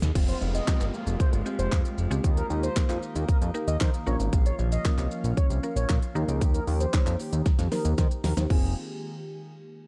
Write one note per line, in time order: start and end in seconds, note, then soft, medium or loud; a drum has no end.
0.00 0.12 D#2 medium
0.00 0.11 F3 medium
0.00 0.13 C4 medium
0.00 0.13 G#4 loud
0.00 snare loud
0.00 closed hi-hat medium
0.00 shaker medium
0.15 0.34 F1 loud
0.15 2.22 G#3 medium
0.15 2.22 F4 medium
0.15 0.54 F4 loud
0.15 4.03 G4 medium
0.15 kick loud
0.15 closed hi-hat medium
0.15 crash medium
0.15 downlifter medium
0.15 shaker medium
0.28 0.67 C4 medium
0.28 0.38 C5 medium
0.28 closed hi-hat soft
0.28 shaker soft
0.41 0.60 F1 loud
0.41 0.80 G#3 medium
0.41 shaker soft
0.54 0.93 F4 medium
0.54 0.91 D#5 medium
0.54 closed hi-hat medium
0.54 shaker medium
0.67 1.09 G#3 medium
0.67 1.09 C4 medium
0.67 1.46 C4 medium
0.67 1.09 F4 medium
0.67 1.09 G4 medium
0.67 kick loud
0.67 snare medium
0.67 clap loud
0.67 closed hi-hat medium
0.67 shaker medium
0.81 0.90 G1 medium
0.81 1.19 G#3 medium
0.81 clap medium
0.81 closed hi-hat medium
0.81 shaker medium
0.94 1.33 F4 medium
0.94 shaker medium
1.07 1.16 F1 medium
1.07 closed hi-hat medium
1.07 shaker medium
1.20 1.58 G#3 medium
1.20 1.29 C5 medium
1.20 kick loud
1.20 closed hi-hat medium
1.20 shaker medium
1.33 1.42 G1 medium
1.33 1.72 F4 medium
1.33 closed hi-hat soft
1.33 shaker soft
1.46 1.80 G#3 medium
1.46 1.80 C4 medium
1.46 1.85 C4 medium
1.46 1.81 F4 medium
1.46 1.81 G4 medium
1.46 shaker medium
1.59 1.68 F1 loud
1.59 1.97 G#3 medium
1.59 1.78 C5 medium
1.59 closed hi-hat medium
1.59 shaker medium
1.72 1.82 F2 loud
1.72 2.11 F4 medium
1.72 kick loud
1.72 snare medium
1.72 clap loud
1.72 closed hi-hat medium
1.72 shaker medium
1.85 3.45 C4 medium
1.85 closed hi-hat soft
1.85 shaker soft
1.98 2.07 F1 medium
1.98 2.29 G#3 medium
1.98 shaker medium
2.11 2.20 C#2 medium
2.11 2.24 G#3 medium
2.11 2.24 C4 medium
2.11 2.24 F4 medium
2.11 3.46 F4 medium
2.11 2.24 G4 loud
2.11 closed hi-hat medium
2.11 shaker medium
2.24 2.43 D#2 loud
2.24 4.05 D#3 medium
2.24 8.46 A#3 medium
2.24 2.63 D#4 loud
2.24 kick loud
2.24 closed hi-hat medium
2.24 shaker medium
2.37 2.76 A#3 medium
2.37 2.47 A#4 medium
2.37 closed hi-hat soft
2.37 shaker soft
2.50 2.69 D#2 loud
2.50 2.89 D#5 medium
2.50 shaker soft
2.63 3.02 D#4 medium
2.63 3.00 C5 medium
2.63 closed hi-hat medium
2.63 shaker medium
2.76 3.18 A#3 medium
2.76 3.15 A#3 medium
2.76 3.18 D#4 medium
2.76 3.18 G4 medium
2.76 3.18 A#4 medium
2.76 kick loud
2.76 snare medium
2.76 clap loud
2.76 closed hi-hat medium
2.76 shaker medium
2.89 2.99 F2 medium
2.89 3.28 D#5 medium
2.89 clap medium
2.89 closed hi-hat medium
2.89 shaker medium
3.03 3.41 D#4 medium
3.03 shaker medium
3.16 3.25 D#2 medium
3.16 3.55 A#3 medium
3.16 closed hi-hat medium
3.16 shaker medium
3.28 3.38 A#4 medium
3.28 4.24 D#5 medium
3.28 kick loud
3.28 closed hi-hat medium
3.28 shaker medium
3.42 3.51 F2 medium
3.42 3.80 D#4 medium
3.42 closed hi-hat soft
3.42 shaker soft
3.54 3.89 A#3 medium
3.54 3.94 A#3 medium
3.54 3.89 D#4 medium
3.54 3.89 G4 medium
3.54 3.89 A#4 medium
3.54 shaker medium
3.67 3.77 D#2 medium
3.67 3.77 D#5 medium
3.67 closed hi-hat medium
3.67 shaker medium
3.81 3.90 D#3 loud
3.81 5.25 D#4 medium
3.81 3.90 C5 medium
3.81 kick loud
3.81 snare medium
3.81 clap loud
3.81 closed hi-hat medium
3.81 shaker medium
3.94 5.65 A#3 medium
3.94 closed hi-hat soft
3.94 shaker soft
4.06 4.16 A#1 loud
4.06 6.13 F3 medium
4.06 4.69 A#3 medium
4.06 4.69 C#4 medium
4.06 6.13 C#4 medium
4.06 4.69 F4 medium
4.06 4.69 A#4 medium
4.06 4.16 C#5 medium
4.06 shaker medium
4.20 4.29 G#1 medium
4.20 closed hi-hat medium
4.20 shaker medium
4.33 4.52 A#1 loud
4.33 4.72 F5 loud
4.33 kick loud
4.33 closed hi-hat medium
4.33 shaker medium
4.46 4.85 F4 medium
4.46 4.55 C#5 medium
4.46 closed hi-hat soft
4.46 shaker soft
4.59 4.78 A#1 loud
4.59 4.98 C#4 medium
4.59 shaker medium
4.72 5.09 D#5 medium
4.72 5.11 F5 medium
4.72 closed hi-hat medium
4.72 shaker medium
4.85 5.27 A#3 medium
4.85 5.27 C#4 medium
4.85 5.27 F4 medium
4.85 5.27 A#4 loud
4.85 kick loud
4.85 snare medium
4.85 clap loud
4.85 closed hi-hat medium
4.85 shaker medium
4.98 5.07 C2 medium
4.98 5.37 C#4 medium
4.98 clap medium
4.98 closed hi-hat medium
4.98 shaker medium
5.11 5.50 F5 medium
5.11 shaker medium
5.24 5.33 A#1 medium
5.24 closed hi-hat medium
5.24 shaker medium
5.37 5.76 C#4 medium
5.37 5.47 C#5 loud
5.37 kick loud
5.37 closed hi-hat medium
5.37 shaker medium
5.50 5.59 C2 loud
5.50 5.89 F5 medium
5.50 closed hi-hat soft
5.50 shaker medium
5.63 5.98 A#3 medium
5.63 5.98 C#4 medium
5.63 6.02 F4 medium
5.63 5.98 F4 medium
5.63 5.98 A#4 medium
5.63 shaker medium
5.76 5.86 A#1 medium
5.76 7.31 C#4 medium
5.76 5.95 C#5 medium
5.76 closed hi-hat medium
5.76 shaker medium
5.89 5.99 A#2 loud
5.89 6.78 F5 medium
5.89 kick loud
5.89 snare medium
5.89 clap loud
5.89 closed hi-hat medium
5.89 shaker medium
6.02 7.37 F4 medium
6.02 closed hi-hat soft
6.02 shaker soft
6.15 6.25 D#2 loud
6.15 8.48 D#3 medium
6.15 6.78 A#3 loud
6.15 6.78 D#4 loud
6.15 6.54 D#4 medium
6.15 8.48 G4 medium
6.15 6.78 G4 medium
6.15 6.78 A#4 loud
6.15 shaker medium
6.28 6.43 C#2 medium
6.28 6.67 G5 medium
6.28 closed hi-hat medium
6.28 shaker medium
6.41 6.60 D#2 loud
6.41 6.52 G4 loud
6.41 kick loud
6.41 closed hi-hat medium
6.41 shaker medium
6.54 6.65 D#4 medium
6.54 6.64 A#4 medium
6.54 closed hi-hat soft
6.54 shaker soft
6.68 6.86 D#2 loud
6.68 6.78 G5 medium
6.68 open hi-hat medium
6.68 shaker medium
6.81 6.92 G4 medium
6.81 7.17 C5 medium
6.81 closed hi-hat medium
6.81 shaker medium
6.93 7.35 A#3 medium
6.93 7.35 D#4 medium
6.93 7.35 G4 medium
6.93 7.36 C#5 medium
6.93 kick loud
6.93 snare medium
6.93 clap loud
6.93 closed hi-hat medium
6.93 shaker medium
7.07 7.16 F2 medium
7.07 7.18 G5 medium
7.07 clap medium
7.07 closed hi-hat medium
7.07 shaker medium
7.20 7.31 G4 medium
7.20 open hi-hat medium
7.20 shaker medium
7.33 7.42 D#2 medium
7.33 7.44 D#4 medium
7.33 closed hi-hat medium
7.33 shaker medium
7.46 7.57 G5 medium
7.46 kick loud
7.46 snare medium
7.46 closed hi-hat medium
7.46 shaker medium
7.59 7.68 F2 medium
7.59 7.70 G4 medium
7.59 snare medium
7.59 closed hi-hat medium
7.59 shaker soft
7.72 8.06 A#3 medium
7.72 7.83 D#4 medium
7.72 8.07 D#4 medium
7.72 8.07 G4 medium
7.72 7.91 A#4 medium
7.72 8.07 C5 medium
7.72 snare medium
7.72 open hi-hat medium
7.72 shaker medium
7.85 7.94 D#2 medium
7.85 closed hi-hat medium
7.85 shaker medium
7.98 8.08 D#3 loud
7.98 8.09 G4 medium
7.98 8.07 C5 medium
7.98 kick loud
7.98 snare medium
7.98 closed hi-hat medium
7.98 shaker medium
8.11 8.22 D#4 medium
8.11 closed hi-hat soft
8.11 shaker soft
8.24 8.33 D#2 medium
8.24 8.33 A#4 medium
8.24 snare loud
8.24 open hi-hat medium
8.24 shaker medium
8.37 8.47 D#2 medium
8.37 8.50 A#3 medium
8.37 8.50 D#4 medium
8.37 8.49 G4 medium
8.37 8.50 C5 medium
8.37 snare medium
8.37 closed hi-hat medium
8.37 shaker medium
8.50 8.74 F1 loud
8.50 8.74 G#3 medium
8.50 8.74 C4 medium
8.50 8.74 F4 medium
8.50 8.74 G4 medium
8.50 8.74 G#4 medium
8.50 kick loud
8.50 crash medium